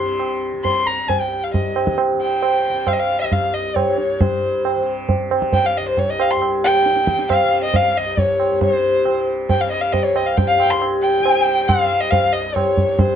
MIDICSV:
0, 0, Header, 1, 4, 480
1, 0, Start_track
1, 0, Tempo, 444444
1, 2142, Time_signature, 5, 2, 24, 8
1, 6453, Tempo, 438276
1, 14317, End_track
2, 0, Start_track
2, 0, Title_t, "Violin"
2, 0, Program_c, 0, 40
2, 0, Note_on_c, 0, 84, 80
2, 449, Note_off_c, 0, 84, 0
2, 698, Note_on_c, 0, 84, 96
2, 935, Note_on_c, 0, 82, 85
2, 951, Note_off_c, 0, 84, 0
2, 1171, Note_on_c, 0, 80, 76
2, 1187, Note_off_c, 0, 82, 0
2, 1297, Note_on_c, 0, 79, 74
2, 1313, Note_off_c, 0, 80, 0
2, 1551, Note_on_c, 0, 77, 69
2, 1568, Note_off_c, 0, 79, 0
2, 1654, Note_off_c, 0, 77, 0
2, 1660, Note_on_c, 0, 75, 65
2, 2108, Note_off_c, 0, 75, 0
2, 2386, Note_on_c, 0, 79, 87
2, 3106, Note_on_c, 0, 77, 81
2, 3122, Note_off_c, 0, 79, 0
2, 3164, Note_on_c, 0, 75, 70
2, 3180, Note_off_c, 0, 77, 0
2, 3235, Note_on_c, 0, 77, 94
2, 3252, Note_off_c, 0, 75, 0
2, 3463, Note_off_c, 0, 77, 0
2, 3468, Note_on_c, 0, 75, 80
2, 3590, Note_on_c, 0, 77, 84
2, 3606, Note_off_c, 0, 75, 0
2, 3821, Note_on_c, 0, 75, 76
2, 3837, Note_off_c, 0, 77, 0
2, 4059, Note_on_c, 0, 73, 73
2, 4075, Note_off_c, 0, 75, 0
2, 4538, Note_on_c, 0, 72, 77
2, 4554, Note_off_c, 0, 73, 0
2, 5258, Note_off_c, 0, 72, 0
2, 5978, Note_on_c, 0, 79, 90
2, 6111, Note_on_c, 0, 77, 83
2, 6127, Note_off_c, 0, 79, 0
2, 6236, Note_on_c, 0, 75, 90
2, 6252, Note_off_c, 0, 77, 0
2, 6345, Note_off_c, 0, 75, 0
2, 6355, Note_on_c, 0, 72, 80
2, 6466, Note_on_c, 0, 73, 78
2, 6482, Note_off_c, 0, 72, 0
2, 6592, Note_on_c, 0, 75, 86
2, 6608, Note_off_c, 0, 73, 0
2, 6711, Note_on_c, 0, 77, 92
2, 6727, Note_off_c, 0, 75, 0
2, 6817, Note_on_c, 0, 84, 83
2, 6833, Note_off_c, 0, 77, 0
2, 6938, Note_off_c, 0, 84, 0
2, 7183, Note_on_c, 0, 79, 110
2, 7861, Note_off_c, 0, 79, 0
2, 7918, Note_on_c, 0, 77, 101
2, 8247, Note_off_c, 0, 77, 0
2, 8278, Note_on_c, 0, 75, 98
2, 8404, Note_on_c, 0, 77, 99
2, 8420, Note_off_c, 0, 75, 0
2, 8645, Note_on_c, 0, 75, 93
2, 8662, Note_off_c, 0, 77, 0
2, 8878, Note_on_c, 0, 73, 82
2, 8894, Note_off_c, 0, 75, 0
2, 9353, Note_off_c, 0, 73, 0
2, 9361, Note_on_c, 0, 72, 90
2, 10031, Note_off_c, 0, 72, 0
2, 10310, Note_on_c, 0, 79, 87
2, 10433, Note_on_c, 0, 77, 85
2, 10450, Note_off_c, 0, 79, 0
2, 10539, Note_off_c, 0, 77, 0
2, 10545, Note_on_c, 0, 75, 87
2, 10656, Note_on_c, 0, 77, 88
2, 10672, Note_off_c, 0, 75, 0
2, 10776, Note_on_c, 0, 75, 83
2, 10792, Note_off_c, 0, 77, 0
2, 10903, Note_on_c, 0, 73, 83
2, 10919, Note_off_c, 0, 75, 0
2, 11035, Note_on_c, 0, 75, 87
2, 11051, Note_off_c, 0, 73, 0
2, 11149, Note_on_c, 0, 77, 91
2, 11166, Note_off_c, 0, 75, 0
2, 11269, Note_on_c, 0, 79, 88
2, 11285, Note_off_c, 0, 77, 0
2, 11364, Note_off_c, 0, 79, 0
2, 11364, Note_on_c, 0, 79, 68
2, 11382, Note_on_c, 0, 77, 97
2, 11398, Note_off_c, 0, 79, 0
2, 11509, Note_on_c, 0, 79, 101
2, 11525, Note_off_c, 0, 77, 0
2, 11632, Note_on_c, 0, 84, 100
2, 11648, Note_off_c, 0, 79, 0
2, 11749, Note_off_c, 0, 84, 0
2, 11973, Note_on_c, 0, 79, 105
2, 12702, Note_on_c, 0, 77, 95
2, 12719, Note_off_c, 0, 79, 0
2, 13058, Note_on_c, 0, 75, 99
2, 13074, Note_off_c, 0, 77, 0
2, 13169, Note_on_c, 0, 77, 104
2, 13185, Note_off_c, 0, 75, 0
2, 13409, Note_on_c, 0, 75, 92
2, 13426, Note_off_c, 0, 77, 0
2, 13645, Note_on_c, 0, 73, 85
2, 13662, Note_off_c, 0, 75, 0
2, 14134, Note_on_c, 0, 72, 82
2, 14151, Note_off_c, 0, 73, 0
2, 14317, Note_off_c, 0, 72, 0
2, 14317, End_track
3, 0, Start_track
3, 0, Title_t, "Tanpura"
3, 0, Program_c, 1, 104
3, 0, Note_on_c, 1, 36, 60
3, 0, Note_on_c, 1, 43, 62
3, 0, Note_on_c, 1, 48, 64
3, 570, Note_off_c, 1, 48, 0
3, 570, Note_on_c, 1, 48, 54
3, 1140, Note_off_c, 1, 36, 0
3, 1144, Note_on_c, 1, 36, 56
3, 1714, Note_off_c, 1, 43, 0
3, 1718, Note_on_c, 1, 43, 62
3, 2310, Note_off_c, 1, 48, 0
3, 2310, Note_on_c, 1, 48, 64
3, 2903, Note_off_c, 1, 48, 0
3, 2903, Note_on_c, 1, 48, 54
3, 3483, Note_off_c, 1, 36, 0
3, 3488, Note_on_c, 1, 36, 54
3, 4068, Note_off_c, 1, 43, 0
3, 4073, Note_on_c, 1, 43, 63
3, 4557, Note_off_c, 1, 43, 0
3, 4557, Note_on_c, 1, 43, 66
3, 5139, Note_off_c, 1, 48, 0
3, 5139, Note_on_c, 1, 48, 64
3, 5720, Note_off_c, 1, 48, 0
3, 5720, Note_on_c, 1, 48, 61
3, 6268, Note_off_c, 1, 36, 0
3, 6273, Note_on_c, 1, 36, 61
3, 6875, Note_off_c, 1, 43, 0
3, 6875, Note_on_c, 1, 43, 61
3, 7476, Note_off_c, 1, 48, 0
3, 7476, Note_on_c, 1, 48, 57
3, 8058, Note_off_c, 1, 48, 0
3, 8058, Note_on_c, 1, 48, 66
3, 8639, Note_off_c, 1, 36, 0
3, 8644, Note_on_c, 1, 36, 68
3, 9233, Note_off_c, 1, 43, 0
3, 9237, Note_on_c, 1, 43, 62
3, 9821, Note_off_c, 1, 48, 0
3, 9821, Note_on_c, 1, 48, 60
3, 10410, Note_off_c, 1, 48, 0
3, 10410, Note_on_c, 1, 48, 62
3, 10994, Note_off_c, 1, 36, 0
3, 10998, Note_on_c, 1, 36, 70
3, 11575, Note_off_c, 1, 43, 0
3, 11579, Note_on_c, 1, 43, 65
3, 12165, Note_off_c, 1, 48, 0
3, 12165, Note_on_c, 1, 48, 65
3, 12732, Note_off_c, 1, 48, 0
3, 12732, Note_on_c, 1, 48, 70
3, 13313, Note_off_c, 1, 36, 0
3, 13318, Note_on_c, 1, 36, 71
3, 13881, Note_off_c, 1, 43, 0
3, 13885, Note_on_c, 1, 43, 64
3, 14317, Note_off_c, 1, 36, 0
3, 14317, Note_off_c, 1, 43, 0
3, 14317, Note_off_c, 1, 48, 0
3, 14317, End_track
4, 0, Start_track
4, 0, Title_t, "Tabla"
4, 210, Note_on_c, 9, 60, 64
4, 318, Note_off_c, 9, 60, 0
4, 698, Note_on_c, 9, 63, 72
4, 698, Note_on_c, 9, 64, 61
4, 806, Note_off_c, 9, 63, 0
4, 806, Note_off_c, 9, 64, 0
4, 1181, Note_on_c, 9, 63, 75
4, 1181, Note_on_c, 9, 64, 70
4, 1289, Note_off_c, 9, 63, 0
4, 1289, Note_off_c, 9, 64, 0
4, 1666, Note_on_c, 9, 63, 75
4, 1666, Note_on_c, 9, 64, 68
4, 1774, Note_off_c, 9, 63, 0
4, 1774, Note_off_c, 9, 64, 0
4, 1900, Note_on_c, 9, 60, 63
4, 2008, Note_off_c, 9, 60, 0
4, 2021, Note_on_c, 9, 37, 63
4, 2129, Note_off_c, 9, 37, 0
4, 2136, Note_on_c, 9, 60, 75
4, 2244, Note_off_c, 9, 60, 0
4, 2619, Note_on_c, 9, 60, 66
4, 2727, Note_off_c, 9, 60, 0
4, 3096, Note_on_c, 9, 60, 68
4, 3096, Note_on_c, 9, 64, 66
4, 3204, Note_off_c, 9, 60, 0
4, 3204, Note_off_c, 9, 64, 0
4, 3583, Note_on_c, 9, 63, 78
4, 3583, Note_on_c, 9, 64, 65
4, 3691, Note_off_c, 9, 63, 0
4, 3691, Note_off_c, 9, 64, 0
4, 4061, Note_on_c, 9, 60, 66
4, 4061, Note_on_c, 9, 64, 61
4, 4169, Note_off_c, 9, 60, 0
4, 4169, Note_off_c, 9, 64, 0
4, 4297, Note_on_c, 9, 62, 62
4, 4405, Note_off_c, 9, 62, 0
4, 4542, Note_on_c, 9, 63, 110
4, 4542, Note_on_c, 9, 64, 97
4, 4650, Note_off_c, 9, 63, 0
4, 4650, Note_off_c, 9, 64, 0
4, 5022, Note_on_c, 9, 60, 71
4, 5130, Note_off_c, 9, 60, 0
4, 5495, Note_on_c, 9, 63, 83
4, 5495, Note_on_c, 9, 64, 71
4, 5603, Note_off_c, 9, 63, 0
4, 5603, Note_off_c, 9, 64, 0
4, 5737, Note_on_c, 9, 60, 74
4, 5845, Note_off_c, 9, 60, 0
4, 5855, Note_on_c, 9, 37, 59
4, 5963, Note_off_c, 9, 37, 0
4, 5968, Note_on_c, 9, 63, 78
4, 5968, Note_on_c, 9, 64, 68
4, 6076, Note_off_c, 9, 63, 0
4, 6076, Note_off_c, 9, 64, 0
4, 6450, Note_on_c, 9, 63, 82
4, 6450, Note_on_c, 9, 64, 74
4, 6559, Note_off_c, 9, 63, 0
4, 6559, Note_off_c, 9, 64, 0
4, 6694, Note_on_c, 9, 60, 74
4, 6803, Note_off_c, 9, 60, 0
4, 6938, Note_on_c, 9, 60, 78
4, 7047, Note_off_c, 9, 60, 0
4, 7419, Note_on_c, 9, 62, 82
4, 7529, Note_off_c, 9, 62, 0
4, 7538, Note_on_c, 9, 62, 70
4, 7648, Note_off_c, 9, 62, 0
4, 7656, Note_on_c, 9, 37, 74
4, 7766, Note_off_c, 9, 37, 0
4, 7783, Note_on_c, 9, 62, 67
4, 7892, Note_off_c, 9, 62, 0
4, 7903, Note_on_c, 9, 60, 85
4, 7903, Note_on_c, 9, 64, 73
4, 8013, Note_off_c, 9, 60, 0
4, 8013, Note_off_c, 9, 64, 0
4, 8382, Note_on_c, 9, 63, 78
4, 8382, Note_on_c, 9, 64, 73
4, 8492, Note_off_c, 9, 63, 0
4, 8492, Note_off_c, 9, 64, 0
4, 8863, Note_on_c, 9, 63, 73
4, 8863, Note_on_c, 9, 64, 70
4, 8973, Note_off_c, 9, 63, 0
4, 8973, Note_off_c, 9, 64, 0
4, 9104, Note_on_c, 9, 60, 70
4, 9213, Note_off_c, 9, 60, 0
4, 9341, Note_on_c, 9, 63, 109
4, 9341, Note_on_c, 9, 64, 100
4, 9450, Note_off_c, 9, 63, 0
4, 9450, Note_off_c, 9, 64, 0
4, 9825, Note_on_c, 9, 60, 75
4, 9935, Note_off_c, 9, 60, 0
4, 10307, Note_on_c, 9, 63, 80
4, 10307, Note_on_c, 9, 64, 70
4, 10417, Note_off_c, 9, 63, 0
4, 10417, Note_off_c, 9, 64, 0
4, 10790, Note_on_c, 9, 63, 80
4, 10790, Note_on_c, 9, 64, 76
4, 10900, Note_off_c, 9, 63, 0
4, 10900, Note_off_c, 9, 64, 0
4, 11032, Note_on_c, 9, 60, 60
4, 11142, Note_off_c, 9, 60, 0
4, 11274, Note_on_c, 9, 63, 75
4, 11274, Note_on_c, 9, 64, 81
4, 11384, Note_off_c, 9, 63, 0
4, 11384, Note_off_c, 9, 64, 0
4, 11515, Note_on_c, 9, 60, 70
4, 11625, Note_off_c, 9, 60, 0
4, 11757, Note_on_c, 9, 60, 83
4, 11866, Note_off_c, 9, 60, 0
4, 12236, Note_on_c, 9, 60, 75
4, 12345, Note_off_c, 9, 60, 0
4, 12712, Note_on_c, 9, 60, 85
4, 12712, Note_on_c, 9, 64, 81
4, 12821, Note_off_c, 9, 60, 0
4, 12821, Note_off_c, 9, 64, 0
4, 13185, Note_on_c, 9, 63, 78
4, 13185, Note_on_c, 9, 64, 74
4, 13295, Note_off_c, 9, 63, 0
4, 13295, Note_off_c, 9, 64, 0
4, 13665, Note_on_c, 9, 60, 81
4, 13665, Note_on_c, 9, 64, 75
4, 13774, Note_off_c, 9, 60, 0
4, 13774, Note_off_c, 9, 64, 0
4, 13901, Note_on_c, 9, 64, 68
4, 14010, Note_off_c, 9, 64, 0
4, 14133, Note_on_c, 9, 63, 119
4, 14133, Note_on_c, 9, 64, 103
4, 14243, Note_off_c, 9, 63, 0
4, 14243, Note_off_c, 9, 64, 0
4, 14317, End_track
0, 0, End_of_file